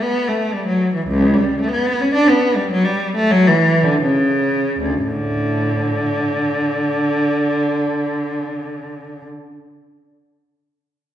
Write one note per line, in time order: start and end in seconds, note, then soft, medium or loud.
0.03 0.27 B3 medium
0.28 0.53 A3 medium
0.54 0.66 G3 medium
0.68 0.93 F#3 medium
0.94 1.07 E3 medium
1.09 1.34 C#2 loud
1.34 1.60 G3 medium
1.61 1.73 A3 loud
1.72 1.99 B3 medium
2.01 2.14 C#4 loud
2.14 2.28 D4 loud
2.29 2.57 B3 medium
2.56 2.71 G3 medium
2.71 2.85 F#3 loud
2.84 3.16 G3 medium
3.15 3.31 A3 loud
3.31 3.48 F#3 loud
3.48 3.83 E3 loud
3.84 4.02 D3 medium
4.03 4.81 C#3 medium
4.81 5.05 D2 medium
5.04 6.58 A2 medium
5.04 9.25 D3 medium